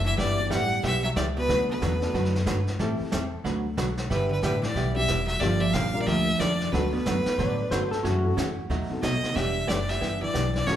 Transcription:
Already playing: upright bass F#1
0.05 hollow-body jazz guitar E3, fiddle E5
0.18 upright bass G1, hollow-body jazz guitar E3 G3 B3 E4 G4, fiddle D5, brush sweep, kick, snare
0.38 upright piano G3 B3 D4 E4 G4
0.50 upright bass A1, hollow-body jazz guitar G3 B3 E4 G4, fiddle F#5, kick, snare, hi-hat pedal
0.83 upright bass B1, hollow-body jazz guitar G3 B3 E4 G4, fiddle E5, brush sweep, kick, snare
1.04 hollow-body jazz guitar F#3, fiddle E5
1.16 upright bass C#2, hollow-body jazz guitar E3 G3 B3 E4 G4, fiddle D5, kick, snare, hi-hat pedal
1.37 hollow-body jazz guitar B2, fiddle B4
1.49 upright bass D2, hollow-body jazz guitar D3 F#3 A3 D4 F#4 B4, brush sweep, kick, snare
1.69 hollow-body jazz guitar B2, fiddle B4
1.82 upright bass E2, hollow-body jazz guitar D3 F#3 A3 D4 F#4 B4, kick, snare, hi-hat pedal
2.01 upright piano A3 B3 D4 F#4 A4, snare
2.14 upright bass F#2, hollow-body jazz guitar D3 F#3 A3 D4 F#4 B4, brush sweep, kick, snare
2.25 snare
2.36 snare
2.46 hollow-body jazz guitar D3 F#3 A3 D4 F#4 B4, kick, snare, hi-hat pedal
2.67 snare
2.79 upright bass A2, hollow-body jazz guitar E3 G3 C4 E4 A4, upright piano A3 C4 E4 G4 A4, brush sweep, kick, snare
3.00 muted upright bass stroke
3.12 upright bass E2, hollow-body jazz guitar E3 G3 C4 E4 A4, kick, snare, hi-hat pedal
3.44 upright bass D2, hollow-body jazz guitar D3 F#3 A3 D4 F#4 B4, brush sweep, kick, snare
3.77 upright bass B1, hollow-body jazz guitar D3 F#3 A3 D4 F#4 B4, kick, snare, hi-hat pedal
3.97 snare
4.10 upright bass G1, hollow-body jazz guitar D3 G3 B3 E4 G4, fiddle B4, brush sweep, kick, snare
4.29 hollow-body jazz guitar D3, fiddle B4
4.42 upright bass A1, hollow-body jazz guitar D3 G3 B3 E4 G4, fiddle B4, kick, snare, hi-hat pedal
4.62 hollow-body jazz guitar E3, fiddle D5, snare
4.75 upright bass B1, hollow-body jazz guitar G3 B3 E4 G4, brush sweep, kick, snare
4.95 hollow-body jazz guitar G3, upright piano G3 B3 D4 E4 G4, fiddle E5
5.08 upright bass E1, hollow-body jazz guitar G3 B3 E4 G4, kick, snare, hi-hat pedal
5.26 hollow-body jazz guitar F#3, fiddle E5, snare
5.40 upright bass G1, hollow-body jazz guitar D3 F3 A#3 D4 G4, upright piano G3 A#3 D4 F4 G4, fiddle D5, brush sweep, kick, snare
5.60 hollow-body jazz guitar F3, fiddle E5
5.73 upright bass A#1, hollow-body jazz guitar D3 F3 G3 A#3 D4 G4, fiddle F5, kick, snare, hi-hat pedal
5.93 upright piano G3 A#3 D4 F4 A#4
6.02 hollow-body jazz guitar F3, fiddle D5
6.06 upright bass D2, hollow-body jazz guitar D3 F3 A#3 D4 G4, fiddle E5, brush sweep, kick, snare
6.38 upright bass F2, hollow-body jazz guitar D3 F3 A#3 D4 G4, fiddle D5, kick, snare, hi-hat pedal
6.60 snare
6.71 upright bass D2, hollow-body jazz guitar B2 D3 F#3 A3 D4 F#4 B4, upright piano A3 B3 D4 F#4 A4, fiddle B4, brush sweep, kick, snare
6.93 hollow-body jazz guitar B2, fiddle B4
7.06 upright bass F#2, hollow-body jazz guitar D3 F#3 A3 D4 F#4 B4, kick, snare, hi-hat pedal
7.26 muted upright bass stroke, snare
7.38 upright bass A2, hollow-body jazz guitar D3 F#3 A3 D4 F#4 B4, pedal steel guitar D5, brush sweep, kick, snare
7.71 upright bass G2, hollow-body jazz guitar D3 F#3 A3 D4 F#4 B4, upright piano A3 B3 D4 F#4 A4, pedal steel guitar C5, kick, snare, hi-hat pedal
7.91 pedal steel guitar A4, snare
8.03 upright bass F#2, hollow-body jazz guitar C#3 E3 A3 C#4 F#4, pedal steel guitar F#4, brush sweep, kick, snare
8.24 upright piano A3 C#4 E4 F#4 A4
8.37 upright bass E2, hollow-body jazz guitar C#3 E3 A3 C#4 F#4, kick, snare, hi-hat pedal
8.70 upright bass D#2, hollow-body jazz guitar B2 F#3 A3 D#4 F#4, brush sweep, kick, snare
8.90 upright piano B3 C4 D#4 F#4 A4, muted upright bass stroke
9.02 upright bass B1, hollow-body jazz guitar B2 F#3 A3 D#4 F#4, fiddle D#5, kick, snare, hi-hat pedal
9.23 muted upright bass stroke, snare
9.35 upright bass E1, hollow-body jazz guitar E3 G3 B3 D4 G4, fiddle E5, brush sweep, kick, snare
9.67 upright bass F#1, hollow-body jazz guitar E3 B3 D4 G4, fiddle D5, kick, snare, hi-hat pedal
9.89 hollow-body jazz guitar G3, fiddle E5, snare
10.01 upright bass G1, hollow-body jazz guitar E3 B3 D4 G4, brush sweep, kick, snare
10.21 hollow-body jazz guitar E3, fiddle D5, muted upright bass stroke
10.33 upright bass B1, hollow-body jazz guitar E3 B3 D4 G4, kick, snare, hi-hat pedal
10.55 hollow-body jazz guitar E3, fiddle D5, snare
10.67 upright bass A1, hollow-body jazz guitar C#3 E3 A3 C#4 F#4, upright piano A3 C#4 E4 F#4 A4, fiddle C#5, brush sweep, kick, snare

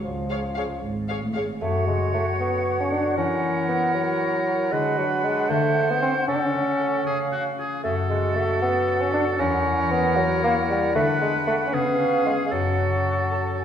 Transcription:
Already playing: harp C#3 C#4 G#4
0.03 double bass section C#2, cello section C#2, bassoon F3
0.30 viola section G#4, violin section C#5 F5
0.56 viola section G#4, violin section C#5 F5
0.83 double bass section G#1, cello section G#2
1.08 viola section G#4, violin section C#5 F5
1.23 cello section A2
1.34 cello section G#2, viola section G#4, violin section C#5 F5
1.61 harp F#2, bassoon A3, clarinet F#4, oboe C#5, flute section F#5
1.87 harp C#3, bassoon G#3
2.13 bassoon A3, harp F#4
2.40 bassoon B3, harp A4
2.65 harp C#5
2.80 bassoon C#4
2.90 bassoon D4, harp A4
3.17 harp E3, bassoon C#4, clarinet E4, oboe A#4
3.42 harp A#3
3.68 bassoon B3, harp F#4
3.94 bassoon F#3, harp A#4
4.20 harp C#5
4.46 harp A#4
4.71 harp D3, bassoon G#3, clarinet D4, oboe B4, flute section F#5
4.97 bassoon F#3, harp D4
5.24 bassoon G#3, harp F#4 B4
5.50 harp D3, bassoon A3, oboe C5
5.76 harp D4
5.90 bassoon B3
6.01 bassoon C4, harp F#4 C5
6.27 harp C#3, bassoon C#4, clarinet C#4, oboe A4
6.35 bassoon D4
6.42 bassoon C#4
6.53 harp A3
6.79 harp F#4 A4
7.05 harp C#3, oboe G#4, flute section F5
7.31 harp C#4, oboe F#4
7.58 harp F4 G#4, oboe G#4
7.83 harp F#2, bassoon A3, clarinet F#4, oboe A4, flute section F#5
8.09 harp C#3, bassoon G#3
8.36 bassoon A3, harp F#4
8.62 bassoon B3, harp A4
8.88 harp C#5
9.01 bassoon C#4
9.14 bassoon D4, harp A4
9.39 harp E2, bassoon C#4, clarinet E4, oboe A#4
9.66 harp E3
9.91 bassoon B3, harp F#4
10.17 bassoon F#3, harp A#4
10.43 bassoon A#3, harp C#5
10.68 bassoon G3, harp A#4
10.94 harp D3, bassoon A3, clarinet D4, oboe B4, flute section F#5
11.20 bassoon G#3, harp B3
11.46 bassoon A3, harp F#4 B4
11.66 bassoon C#4
11.73 harp C#3, bassoon B3, clarinet C#4, oboe G#4, flute section F5
11.99 harp C#4
12.26 bassoon G#3, harp F4 G#4
12.45 bassoon G#3
12.51 harp F#2, bassoon F#3, clarinet F#4, oboe A4, flute section F#5
12.78 harp C#3
13.05 harp F#4
13.31 harp A4, flute section A5
13.57 harp C#5, flute section G#5

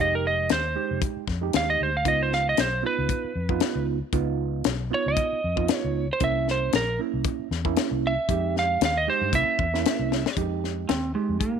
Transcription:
0.00 fingered electric bass F1, reed electric piano G#3 D#4 G4, electric slide guitar D#5
0.15 electric slide guitar A#4
0.27 electric slide guitar D#5
0.49 fingered electric bass D#2, electric slide guitar C5, snare, closed hi-hat
0.75 reed electric piano G#3 D#4 G4
0.91 fingered electric bass F1
1.02 kick, closed hi-hat
1.17 muted fingered electric bass stroke
1.27 fingered electric bass F2, kick, snare
1.41 reed electric piano G#3 D#4 G4
1.53 fingered electric bass D#2, electric slide guitar F5, snare, closed hi-hat
1.70 electric slide guitar D#5
1.80 fingered electric bass D2, electric slide guitar C5
1.97 electric slide guitar F5
2.05 fingered electric bass C#2, reed electric piano B3 D#4 F4, electric slide guitar D#5, kick, closed hi-hat
2.23 electric slide guitar C5
2.32 electric slide guitar F5, snare
2.49 electric slide guitar D#5
2.57 fingered electric bass B1, electric slide guitar C5, snare, closed hi-hat
2.82 reed electric piano B3 D#4 F4
2.86 electric slide guitar B4
2.98 fingered electric bass C#2
3.09 kick, closed hi-hat
3.24 muted fingered electric bass stroke
3.35 fingered electric bass F2
3.49 reed electric piano B3 D#4 F4, kick
3.60 snare, closed hi-hat
3.75 fingered electric bass C#2
4.12 fingered electric bass C#2, reed electric piano B3 D#4 F4, kick, closed hi-hat
4.64 fingered electric bass B1, snare, closed hi-hat
4.90 reed electric piano B3 D#4 F4, electric slide guitar C#5
5.06 fingered electric bass C#2, electric slide guitar D#5
5.17 kick, closed hi-hat
5.33 muted fingered electric bass stroke
5.44 fingered electric bass F2
5.56 reed electric piano B3 D#4 F4, kick
5.68 snare, closed hi-hat
5.76 electric slide guitar C#5
5.84 fingered electric bass C#2
6.13 electric slide guitar C5
6.20 fingered electric bass C2, reed electric piano A#3 C#4 E4, electric slide guitar E5, kick, closed hi-hat
6.48 electric slide guitar C5, snare
6.72 fingered electric bass A#1, electric slide guitar A#4, snare, closed hi-hat
6.99 reed electric piano A#3 C#4 E4
7.14 fingered electric bass C2
7.24 kick, closed hi-hat
7.39 muted fingered electric bass stroke
7.51 fingered electric bass E2, snare
7.65 reed electric piano A#3 C#4 E4, kick
7.76 snare, closed hi-hat
7.91 fingered electric bass C2
8.07 electric slide guitar E5
8.29 fingered electric bass F2, reed electric piano G#3 D#4 G4, kick, closed hi-hat
8.56 electric slide guitar F5, snare
8.81 fingered electric bass D#2, snare, closed hi-hat
8.85 electric slide guitar F5
8.97 electric slide guitar D#5
9.07 reed electric piano G#3 D#4 G4, electric slide guitar C5
9.21 fingered electric bass G2
9.33 fingered electric bass C2, reed electric piano A#3 C#4 E4, electric slide guitar E5, kick, closed hi-hat
9.59 fingered electric bass E2, kick
9.74 reed electric piano A#3 C#4 E4, snare
9.85 snare, closed hi-hat
9.99 fingered electric bass C2
10.12 snare
10.26 snare
10.36 fingered electric bass F2, reed electric piano G#3 D#4 G4, kick, closed hi-hat
10.64 snare
10.89 fingered electric bass D#2, electric slide guitar C4, snare, closed hi-hat
11.14 reed electric piano G#3 D#4 G4, electric slide guitar G#3
11.29 fingered electric bass F2
11.40 electric slide guitar A#3, kick, closed hi-hat
11.56 muted fingered electric bass stroke

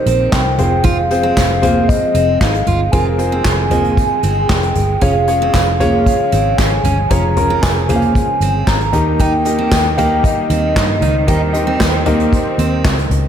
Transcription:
Already playing: grand piano C3 C4 D#4 G4 A#4 C5, string section C3 D#3 F3, soft synth lead C5
0.06 fingered electric bass A#1, steel-string acoustic guitar C4, closed hi-hat, tambourine
0.32 fingered electric bass C2, soft synth lead G5, kick, snare, clap, closed hi-hat, tambourine
0.58 fingered electric bass F1, string section G#3, grand piano C4 F4 G#4 C5, closed hi-hat, floor tom
0.84 steel-string acoustic guitar F4, soft synth lead F5, kick, closed hi-hat, tambourine
1.11 grand piano C4 F4 G#4 C5, closed hi-hat, tambourine
1.23 steel-string acoustic guitar C4
1.37 fingered electric bass F1, kick, snare, clap, closed hi-hat, tambourine
1.62 steel-string acoustic guitar A#3, grand piano C4 F4 G#4 C5, closed hi-hat, floor tom, tambourine
1.88 soft synth lead D#5, kick, closed hi-hat, tambourine
2.14 fingered electric bass F1, steel-string acoustic guitar C4, closed hi-hat, tambourine
2.40 fingered electric bass G#1, steel-string acoustic guitar D#4, soft synth lead F5, kick, snare, clap, closed hi-hat, tambourine
2.54 closed hi-hat
2.67 fingered electric bass G1, string section D#3, steel-string acoustic guitar F4, closed hi-hat, floor tom, tambourine
2.92 fingered electric bass F1, grand piano C4 F4 G#4 A#4, steel-string acoustic guitar F4, soft synth lead G#5, kick, closed hi-hat
3.18 grand piano C4 F4 G#4 C5, soft synth lead G#5, closed hi-hat, tambourine
3.32 steel-string acoustic guitar C4
3.45 fingered electric bass F1, kick, snare, clap, closed hi-hat, tambourine
3.71 steel-string acoustic guitar A#3, grand piano C4 F4 G#4 D#5, closed hi-hat, floor tom, tambourine
3.85 closed hi-hat
3.97 kick, closed hi-hat, tambourine
4.23 fingered electric bass G1, steel-string acoustic guitar C4, closed hi-hat, tambourine
4.48 fingered electric bass F1, soft synth lead G5, kick, snare, clap, closed hi-hat, tambourine
4.63 closed hi-hat
4.76 fingered electric bass G1, closed hi-hat, floor tom, tambourine
5.01 fingered electric bass F1, string section C#3 F3, steel-string acoustic guitar C#4, grand piano C#4 F4 G#4 C#5, soft synth lead F5, kick, closed hi-hat
5.28 grand piano C#4 F4 G#4 C#5, closed hi-hat, tambourine
5.42 steel-string acoustic guitar C4
5.54 fingered electric bass F1, kick, snare, clap, closed hi-hat, tambourine
5.80 steel-string acoustic guitar A#3, grand piano C#4 F4 G#4 C#5, closed hi-hat, floor tom, tambourine
6.05 soft synth lead F5, kick, closed hi-hat, tambourine
6.32 fingered electric bass G#1, steel-string acoustic guitar C4, closed hi-hat, tambourine
6.57 fingered electric bass G#1, steel-string acoustic guitar C#4, soft synth lead G#5, kick, snare, clap, closed hi-hat, tambourine
6.84 fingered electric bass G1, steel-string acoustic guitar C#4, closed hi-hat, floor tom
7.10 fingered electric bass F1, grand piano C#4 F4 G#4 C#5, steel-string acoustic guitar C#4, soft synth lead A#5, kick, closed hi-hat, tambourine
7.37 grand piano C#4 F4 G#4 A#4, closed hi-hat, floor tom, tambourine
7.50 steel-string acoustic guitar C4
7.62 fingered electric bass F1, soft synth lead G#5, kick, snare, clap, closed hi-hat, tambourine
7.89 grand piano C#3 F4 G#4 C5, steel-string acoustic guitar A#3, closed hi-hat, floor tom, tambourine
7.96 grand piano F5
8.02 closed hi-hat
8.15 kick, closed hi-hat, tambourine
8.41 fingered electric bass G1, steel-string acoustic guitar C4, closed hi-hat, tambourine
8.67 fingered electric bass G#1, soft synth lead A#5, kick, snare, clap, closed hi-hat, tambourine
8.81 closed hi-hat
8.93 fingered electric bass D#2, grand piano D#3 D#4 G4 A#4 D#5, string section D#3 G3 A#3, closed hi-hat, floor tom, tambourine
9.19 steel-string acoustic guitar D#4, soft synth lead G5, kick, closed hi-hat, tambourine
9.45 grand piano D#4 G4 A#4 D#5, closed hi-hat, tambourine
9.59 steel-string acoustic guitar C4
9.72 fingered electric bass D#2, kick, snare, clap, closed hi-hat, tambourine
9.97 steel-string acoustic guitar A#3, grand piano D#4 G4 A#4 F5, closed hi-hat, floor tom, tambourine
10.24 soft synth lead D#5, kick, closed hi-hat, tambourine
10.50 fingered electric bass D#2, steel-string acoustic guitar C4, closed hi-hat, tambourine
10.76 fingered electric bass G2, steel-string acoustic guitar D#4, kick, snare, clap, closed hi-hat, tambourine
11.01 fingered electric bass C#2, grand piano D#3, string section C4, steel-string acoustic guitar D#4, closed hi-hat, floor tom
11.27 fingered electric bass D#2, grand piano D#4 G4 A#4 D#5, steel-string acoustic guitar D#4, soft synth lead G5, kick, closed hi-hat, tambourine
11.53 grand piano D#4 G4 A#4 D#5, closed hi-hat, tambourine
11.67 steel-string acoustic guitar C4
11.80 fingered electric bass D#2, kick, snare, clap, closed hi-hat, tambourine
12.06 steel-string acoustic guitar A#3, grand piano D#4 G4 A#4 D#5, closed hi-hat, floor tom, tambourine
12.20 closed hi-hat
12.33 kick, closed hi-hat, tambourine
12.58 fingered electric bass D#2, steel-string acoustic guitar C4, closed hi-hat, tambourine
12.85 fingered electric bass C#2, kick, snare, clap, closed hi-hat, tambourine
12.98 closed hi-hat
13.10 fingered electric bass C#2, closed hi-hat, floor tom

